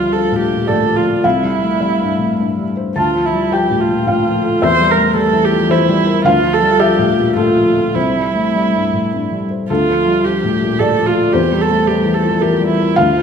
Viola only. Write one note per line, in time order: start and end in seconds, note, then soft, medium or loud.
0.00 0.15 F4 medium
0.13 0.39 A4 medium
0.40 0.69 G4 medium
0.68 0.98 A4 medium
0.96 1.26 F4 medium
1.24 2.68 E4 medium
2.96 3.27 F4 medium
3.25 3.55 E4 soft
3.53 3.82 G4 medium
3.81 4.65 F4 medium
4.63 4.93 C5 medium
4.91 5.16 A#4 medium
5.17 5.46 A4 medium
5.44 5.72 G4 medium
5.71 6.25 E4 medium
6.25 6.55 F4 medium
6.54 6.81 A4 medium
6.80 7.36 G4 medium
7.37 7.97 F4 medium
7.95 9.41 E4 medium
9.70 10.26 F4 medium
10.25 10.81 G4 medium
10.79 11.08 A4 medium
11.06 11.35 F4 medium
11.33 11.63 G4 medium
11.61 11.89 A4 medium
11.87 12.16 G4 medium
12.14 12.43 A4 medium
12.42 12.68 G4 medium
12.68 12.98 E4 medium
12.96 13.22 F4 medium